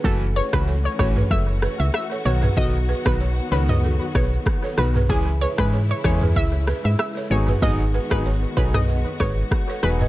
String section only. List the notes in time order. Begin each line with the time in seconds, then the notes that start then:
0.04 E3 A3 C#4 F#4
2.25 D#3 F#3 B3
5.09 C#3 E3 G#3 E4
7.30 D#3 B3 F#4